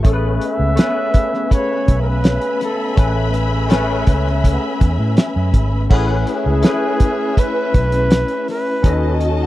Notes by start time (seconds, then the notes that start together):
0.03 A1 C#3 A3 B3 C#4 G#4 A4 B4, kick, closed hi-hat
0.13 B4
0.41 E5, closed hi-hat
0.59 C#2
0.75 A3 B3 G#4 B4, snare, closed hi-hat
0.83 C#4
1.14 kick, closed hi-hat
1.34 snare
1.51 C#5 E5 G#5 B5, kick, closed hi-hat
1.88 B1, kick, closed hi-hat
2.02 A#4
2.09 B4
2.24 C#5, snare, closed hi-hat
2.42 closed hi-hat
2.61 A4, snare, closed hi-hat
2.95 A1 A3 C#4 B4 G#5, kick, closed hi-hat
3.34 closed hi-hat
3.68 A3 C#4 G#4 B4, snare, closed hi-hat
4.07 C#2 C#5, kick, closed hi-hat
4.27 E5, snare
4.44 kick, closed hi-hat
4.53 F#5
4.81 E2, kick, closed hi-hat
4.99 A2
5.17 E5, snare, closed hi-hat
5.36 F#2
5.40 G#5
5.54 G#1, kick, closed hi-hat
5.64 B5
5.89 A1 A3 C#4 E4 G#4 B4 E5 F#5, kick, crash
6.27 G#4, closed hi-hat
6.46 C#2
6.61 A3 C#4 E4 G#4 B4, snare, closed hi-hat
7.00 kick, closed hi-hat
7.37 B4, kick, closed hi-hat
7.74 B1, kick, closed hi-hat
7.92 closed hi-hat
8.11 snare, closed hi-hat
8.28 closed hi-hat
8.48 B4, snare, open hi-hat
8.82 D#2 C#4 D#4 F#4 A4 D#5 A5, kick, closed hi-hat
9.21 D#5, closed hi-hat
9.43 F#5